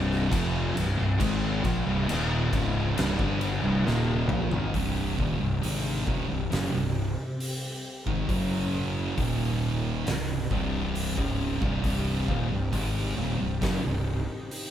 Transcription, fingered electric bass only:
Already playing: C1
0.32 F1
0.76 C1
0.99 C1
1.21 G#1
1.64 A#1
1.88 C1
2.10 D#1
2.53 C#1
2.98 C1
3.19 G1
3.64 C1
3.86 D#1
4.31 A#1
4.53 G#1
4.74 C1
5.18 D#1
5.41 C1
5.63 G#1
6.08 D#1
6.30 C1
6.52 F#1
6.75 C1
8.07 G#1
8.29 F#1
9.18 D#1
10.07 C1
10.51 C1
11.17 C#1
11.62 C1
11.84 C1
12.29 D#1
12.51 C1
12.73 G#1
13.18 D#1
13.41 C1
13.62 F#1
13.84 C1

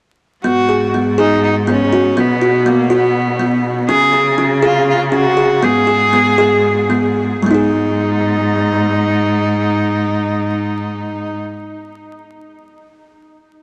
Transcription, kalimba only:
0.44 B3
0.69 G#4
0.94 B3
1.18 G#4
1.67 B3
1.93 F#4
2.17 B3
2.41 F#4
2.66 B3
2.90 F#4
3.39 B3
3.89 C#4
4.13 G#4
4.38 C#4
4.62 G#4
5.12 C#4
5.37 G#4
5.63 B3
5.87 G#4
6.13 B3
6.38 G#4
6.90 B3
7.42 G#3 B3
7.51 D#4 G#4

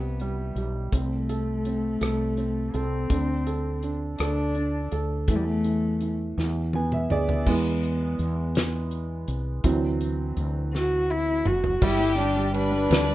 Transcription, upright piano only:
Already playing: D4 E4 G4
0.21 G3
0.58 G4
0.93 C4
1.29 A4
1.66 C4
2.01 A4
2.38 C4
2.74 A4
3.10 D4
3.47 A4
3.83 D4
4.20 A4
4.55 D4
4.92 A4
5.28 E3
5.65 E3
6.01 E3
6.38 E3
6.75 B3 G#5
6.93 E5
7.11 G#4 D5
7.47 E3 G#3 B3
9.64 E3 F#3 C4
11.82 G3
12.00 G3
12.18 G3
12.36 G3
12.54 G3
12.72 G3
12.90 D4
13.08 G3

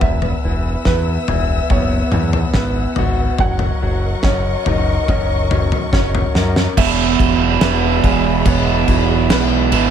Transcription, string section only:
Already playing: B4
0.02 E5 F#5 E6
3.41 A#4 D#5 C#6
6.79 G#4 E5 F#5 B5

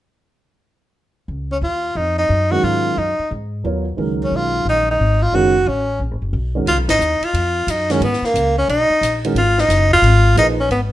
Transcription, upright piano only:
2.51 D#3 F#3 G#3 C#4 A#4
3.64 F#3 B3 F4 A#4 C#5
3.97 D#3 F#3 G#3 C#4 A#4
5.33 D#3 G#3 C#4 F#4 A#4
6.55 D#3 G#3 C#4 F#4 A#4
7.90 D#3 G#3 C#4 F#4 A#4
9.25 D#3 G#3 C#4 F#4 A#4
10.37 F3 A#3 D#4 G#4 B4

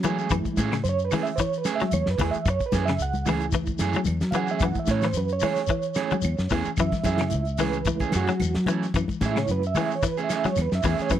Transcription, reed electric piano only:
Already playing: G#3 A3 C#4
0.30 G#3 A3 E4
0.84 C5
0.89 C#5
1.04 B4
1.23 E5
1.36 C5
1.40 C#5
1.58 B4
1.75 E5
1.94 C#5
2.10 B4
2.31 E5
2.50 C#5
2.66 B4
2.85 E5
3.02 F#5
3.26 G#3 A3 E4
4.31 F5
4.36 F#5
4.51 E5
4.62 G#3 A3 E4 F#5
4.79 E5
4.91 C#5
5.07 C5
5.17 B4
5.33 C#5
5.45 C#5
6.80 E5
7.04 G#3 A3 E4 E5
7.61 B4
7.86 G#3 A3 E4
8.16 F#4
9.23 G#3 A3 E4 E5
9.39 C#5
9.51 B4
9.67 E5
9.81 E5
9.95 C#5
10.08 B4
10.24 E5
10.36 E5
10.49 C#5
10.62 B4
10.75 E5
10.88 E5
11.02 C#5
11.13 B4

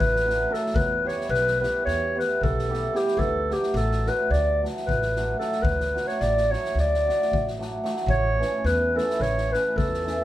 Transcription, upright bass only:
0.00 A1
0.74 E2
1.29 B1
1.87 E2
2.41 B1
3.17 D2
3.74 A1
4.30 D2
4.87 A1
5.63 D2
6.21 A1
6.75 D2
7.32 A1
8.06 A1
8.64 E2
9.20 A1
9.76 E2

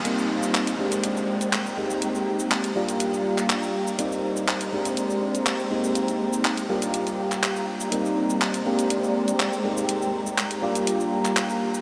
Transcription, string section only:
0.05 D#4 C5 A#5
0.79 G#3 D5 G5
2.76 G4 F5
3.99 D#4 C5
4.72 G#3 D5 G5
6.69 G4 F5 A#5
7.92 D#4 C5
8.66 G#3 D5 G5
9.64 A#5
10.63 G4 F5

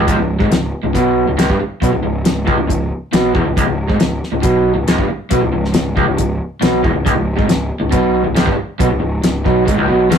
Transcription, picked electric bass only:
0.08 C#1
0.17 C#1
0.41 G#1
0.50 C#1
0.84 C#1
0.95 B1
1.27 C#1
1.38 C#1
1.50 G1
1.59 muted picked electric bass stroke
1.83 B1
1.92 C#1
2.02 C#1
2.26 C#1
2.48 C#1
2.58 C#1
2.70 C#1
3.14 B1
3.35 E1
3.46 C#1
3.57 C#1
3.68 C#1
3.89 G#1
3.99 C#1
4.32 C#1
4.44 B1
4.76 C#1
4.87 C#1
4.98 G1
5.10 muted picked electric bass stroke
5.32 B1
5.42 C#1
5.54 C#1
5.76 C#1
5.97 C#1
6.07 C#1
6.19 C#1
6.63 B1
6.85 E1
6.96 C#1
7.07 C#1
7.18 C#1
7.39 G#1
7.50 C#1
7.83 C#1
7.93 B1
8.27 C#1
8.37 C#1
8.47 G1
8.58 muted picked electric bass stroke
8.80 B1
8.91 C#1
9.02 C#1
9.46 B1
9.68 G#1
9.78 C#1
9.88 B1
10.11 E1

